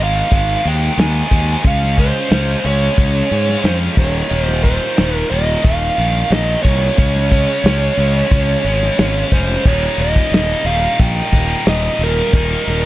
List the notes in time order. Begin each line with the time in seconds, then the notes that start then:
Already playing: G#2 D#3
0.00 G#1 G#3 F5
0.30 G#1 G#2 D#3 G#3, kick, closed hi-hat
0.62 D#2 G#2 D#3 G#3, closed hi-hat
0.68 G5
0.98 D#2 G#2 D#3 G#3 G#5, snare, closed hi-hat
1.30 D#2 G#2 D#3 G#3, kick, closed hi-hat
1.64 C#2 C#3 G#3 C#4 F5, kick, closed hi-hat
1.83 snare
1.97 C#3 G#3 C#4 C5, kick, closed hi-hat
2.30 C#2 C#3 G#3 C#4, snare, closed hi-hat
2.63 C#2 C#3 G#3 C#4 C#5, closed hi-hat
2.96 C#2 C#3 G#3 C#4, kick, closed hi-hat
3.30 G#2 C#3 G#3 C#4, closed hi-hat
3.49 snare
3.63 F2 C#3 G#3 C#4 C5, snare, closed hi-hat
3.96 D#1 D#2 A#2 D#3 C#5, kick, closed hi-hat
4.29 D#1 D#2 A#2 D#3, closed hi-hat
4.43 C5
4.49 snare
4.63 D#2 A#2 D#3 C5, kick, closed hi-hat
4.96 D#1 D#2 A#2 D#3, snare, closed hi-hat
5.16 A#4
5.30 D#1 D#2 A#2 D#3 D#5, closed hi-hat
5.62 D#1 D#2 A#2 D#3 F5, kick, closed hi-hat
5.97 A#1 D#2 A#2 D#3, closed hi-hat
6.29 A#1 D#2 A#2 D#3 D#5, snare, closed hi-hat
6.62 C2 D#2 A#2 D#3 C#5, kick, closed hi-hat
6.96 C#2 C#3 G#3 C#4, kick, closed hi-hat
7.16 snare
7.30 C#3 G#3 C#4, kick, closed hi-hat
7.64 C#2 C#3 G#3 C#4, snare, closed hi-hat
7.97 C#2 C#3 G#3 C#4, closed hi-hat
8.30 C#2 C#3 G#3 C#4, kick, closed hi-hat
8.64 G#1 C#3 G#3 C#4, closed hi-hat
8.83 snare
8.98 G#1 C#3 G#3 C#4, snare, closed hi-hat
9.32 F1 C#3 G#3 C#4 C5, kick, closed hi-hat
9.65 D#1 D#2 A#2 D#3 G3 A#3 D#4 C#5, kick, crash
9.98 D#1 D#5, closed hi-hat
10.16 kick
10.32 D#1, snare, closed hi-hat
10.49 closed hi-hat
10.64 D#1 D#3 G3 A#3 D#4 F5, closed hi-hat
10.69 D#2 A#2
10.99 A#1 G5, kick, closed hi-hat
11.17 closed hi-hat
11.32 D#1, kick, snare, closed hi-hat
11.66 D#1 D#5, snare, closed hi-hat
11.99 D#1, closed hi-hat
12.03 A#4
12.33 D#1 D#2 A#2 D#3 G3 A#3 D#4, kick, closed hi-hat
12.51 closed hi-hat
12.67 D#1, snare, closed hi-hat